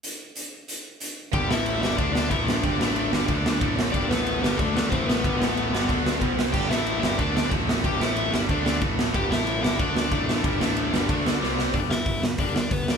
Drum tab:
CC |--------|--------|--------|--------|
RD |--------|x-x-x-x-|x-x-x-x-|x-x-x-x-|
HH |x-x-x-x-|--------|--------|--------|
SD |--------|-o-o-o-o|-o-o-o-o|-o-o-o-o|
BD |--------|o---o-o-|o---o-o-|o---o-o-|

CC |--------|x-------|--------|--------|
RD |x-x-x-x-|--x-x-x-|x-x-x-x-|x-x-x-x-|
HH |--------|--------|--------|--------|
SD |-o-o-o-o|-o-o-o-o|-o-o-o-o|-o-o-o-o|
BD |o---o-o-|o---o-o-|o---o-o-|o---o-o-|

CC |--------|--------|
RD |x-x-x---|--------|
HH |--------|o-o-o-o-|
SD |-o-o-ooo|-o-o-o-o|
BD |o---o---|o-o-o-o-|